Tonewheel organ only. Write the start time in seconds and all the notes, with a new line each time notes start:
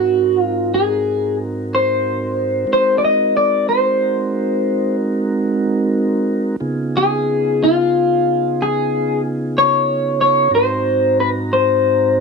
Already playing: G#2 C4 D#4 F#4 A#4
2.67 G#3 C4 D#4 F#4 A#4
6.60 C#3 B3 D#4 F4 G#4
10.51 G#2 C4 D#4 F#4 A#5